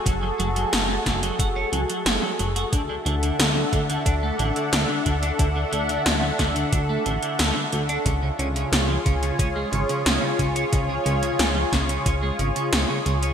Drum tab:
HH |x-xxx-xxx-xxx-xx|x-xxx-xxx-xxx-xx|x-xxx-xxx-xxx-xx|x-xxx-xxx-xxx-xx|
SD |----o-o-----o---|----o-------o---|----o-o-----o---|----o-------o---|
BD |o-----o-o-------|o-----o-o-----o-|o-----o-o-------|o-----o-o-----o-|

HH |x-xxx-xxx-xxx-xx|
SD |----o-o-----o---|
BD |o-----o-o-------|